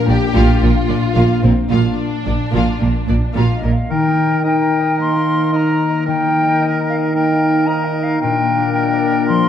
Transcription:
Already playing: A#2 D4 F4 A#4
0.07 A#1 A#2 A#3 D4 G4 D5
0.34 A#1 A#2 A#3 F4 F5
0.61 A#1 A#2 A#3 F4 A#4
0.88 A#1 A#2 A#3 D4 D5
1.15 A#1 A#2 A#3 F4 F5
1.43 A#1 A#2 A#3 C4 A#4
1.70 A#1 A#2 A#3 D4 F4 F5
2.25 A#1 A#2 A#3 D4 D5
2.53 A#1 A#2 A#3 F4 F5
2.80 A#1 A#2 A#3 A#4
3.08 A#1 A#2 A#3 D4 D5
3.35 A#1 A#2 A#3 F4 F5 A#5
3.56 D#5
3.63 A#1 A#2 A#3 A#4
3.73 F5
3.90 D#3 D#4 A#4 G5
4.08 D#4
4.27 A#4
4.43 D#4 A#4 D#5 G5
4.62 A#5
4.80 D#5
4.99 A#3 C6
5.16 D#4
5.35 A#4
5.52 D#4 A#4 D#5 A#5
5.72 A#5
5.90 D#5
6.06 D#3 D#4 A#4 G5
6.26 D#4
6.43 A#4
6.61 D#5
6.81 A#5
6.90 F5
6.97 D#5
7.14 A#3 D#4 A#4 G5
7.32 D#4
7.50 A#4
7.67 D#4 A#4 D#5 A#5
7.85 D#5 A#5
8.03 D#5 F5
8.20 A#2 D4 A#4 G5
8.39 A#3
8.57 D4
8.73 A#4 G5
8.93 D5
9.11 A#4
9.28 F3 C6

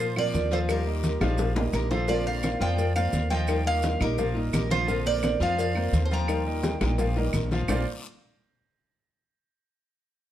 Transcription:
Already playing: A#2 F3 F4 C5 F5
0.00 high conga, maracas
0.16 F3 A#3 C4 F4 A#4 D5 F5, high conga, claves
0.33 D#2 D3 A#3 C4 F4, cowbell, high conga, short guiro, maracas
0.51 F3 F4 A4 C5 F5, cowbell, high conga, short guiro, maracas
0.69 D#3 G3 D#4 F4 G4 A#4, cowbell, high conga, long guiro, claves, maracas
0.86 A#3 A#4 D#5, high conga
1.03 D#3 G3 D#4 F4, cowbell, high conga, short guiro, maracas
1.21 A#1 F3 G3 D#4 F4 F5, cowbell, high bongo, high conga, short guiro, claves, maracas
1.38 muted nylon-string guitar stroke, cowbell, high bongo, low conga, long guiro, maracas
1.55 G3 A#3 D#4 F4 A#4 D#5, low bongo, low conga
1.72 A#1 D#3 G3 D#4 F4 G4 A#4, cowbell, low conga, short guiro, claves, maracas
1.90 F3 F4 A4 C5 F5, low bongo, low conga, short guiro, maracas
2.08 D3 F3 A#3 C4 F4 A#4 D5 F5, cowbell, high conga, long guiro, maracas
2.25 A#3 A#4 C5 D5 F5, high conga
2.42 D3 A#3 C4 F4, cowbell, high conga, short guiro, claves, maracas
2.59 F2 F3 A#3 C4 F4 D5 F5 G5, cowbell, short guiro, maracas
2.78 muted nylon-string guitar stroke, cowbell, high conga, long guiro, maracas
2.96 A#3 C4 F4 A#4 C5 D5 F5, high conga, claves, maracas
3.13 D#2 D3 A#3 C4 F4, cowbell, high conga, short guiro, maracas
3.30 F3 F4 D#5 F5 G5, cowbell, high conga, short guiro, maracas
3.47 D#3 G3 D#4 F4, cowbell, high conga, long guiro, claves, maracas
3.66 A#3 A#4 D#5 F5, high conga
3.82 D#3 G3 D#4 F4, cowbell, high conga, short guiro, maracas
4.00 A#1 G3 A#3 D#4 F4 G4 A#4 D#5, cowbell, low conga, short guiro, claves, maracas
4.18 F3 F4 F5, muted nylon-string guitar stroke, cowbell, high conga, low conga, long guiro, maracas
4.34 G3 A#3 D#4 F4 A#4 D#5, high conga
4.52 A#1 D#3 G3 D#4 F4 G4 A#4, cowbell, high conga, short guiro, claves, maracas
4.70 F3 F4 C5 F5, high conga, short guiro, maracas
4.87 D3 F3 A#3 C4 F4 F5, cowbell, high conga, long guiro, maracas
5.06 A#3 A#4 C5 D5, high conga, maracas
5.22 D3 A#3 C4 F4, cowbell, high conga, short guiro, claves, maracas
5.40 F2 F3 A#3 C4 F4 D5 F5, cowbell, high conga, short guiro, maracas
5.56 D5 F5, muted nylon-string guitar stroke, cowbell, high conga, long guiro, maracas
5.75 A#3 C4 F4 A#4 C5, high conga, claves
5.93 D#2 D3 A#3 C4 F4, cowbell, high conga, short guiro, maracas
6.04 C5 A5
6.11 F3 F4 F5 G5 A#5, cowbell, high conga, short guiro, maracas
6.28 D#3 G3 D#4 F4, cowbell, high conga, long guiro, claves, maracas
6.46 A#3 A#4 D#5, high conga
6.63 D#3 G3 D#4 F4, cowbell, high bongo, high conga, short guiro, maracas
6.81 A#1 G3 A#3 D#4 F4 A#4 D#5, cowbell, high bongo, low conga, short guiro, claves, maracas
6.98 F3 F4 F5, muted nylon-string guitar stroke, cowbell, low bongo, high conga, low conga, long guiro, maracas
7.16 G3 A#3 D#4 F4 A#4 D#5, low bongo, high conga
7.33 A#1 D#3 G3 D#4 F4, cowbell, high conga, short guiro, claves, maracas
7.51 F3 F4 F5, low bongo, high conga, short guiro, maracas
7.68 A#1 A#2 D3 A#3 C4 F4 A#4 C5 D5 F5, low bongo, low conga, long guiro, claves, maracas

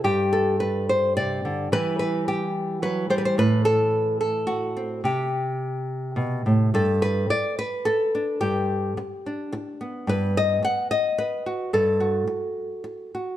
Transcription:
0.04 G2 G4
0.33 A4
0.60 B4
0.89 C5
1.17 C3 D5
1.45 D3
1.72 E3 G3 E4 B4
1.99 B4
2.28 G4
2.82 F#3 B4
3.10 G3 C5
3.18 B4
3.25 C5
3.38 A2 B4
3.65 A4
4.21 A4
4.47 F#4
4.77 C4
5.04 C3 G4
6.16 B2
6.46 A2
6.74 G2 A4
7.02 B4
7.30 D5, muted nylon-string guitar stroke
7.59 B4
7.85 A4, muted nylon-string guitar stroke
8.15 D4
8.41 G2 G4
8.97 muted nylon-string guitar stroke
9.26 D4
9.52 muted nylon-string guitar stroke
9.81 B3
10.07 G2 B4
10.37 D#5
10.63 F#5, muted nylon-string guitar stroke
10.91 D#5
11.18 B4, muted nylon-string guitar stroke
11.46 F#4
11.73 G2 A4
12.00 F#4
12.27 muted nylon-string guitar stroke
12.84 muted nylon-string guitar stroke
13.15 F#4

